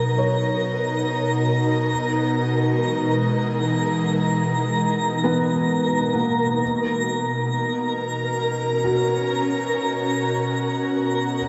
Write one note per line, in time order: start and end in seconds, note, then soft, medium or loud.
0.00 11.36 B2 medium
0.00 11.48 B2 medium
0.00 1.90 F#3 medium
0.00 8.51 D#4 medium
0.00 11.48 A#4 medium
0.00 0.43 B4 medium
0.00 1.82 A#5 soft
0.00 11.48 A#5 medium
0.18 4.37 C#5 medium
2.34 6.62 E3 medium
2.34 6.62 G#3 medium
5.24 6.37 B3 medium
6.14 10.33 A#3 medium
7.15 11.38 A#4 medium
8.17 11.48 C#4 medium
8.77 11.48 F#4 medium
8.84 11.48 F#4 medium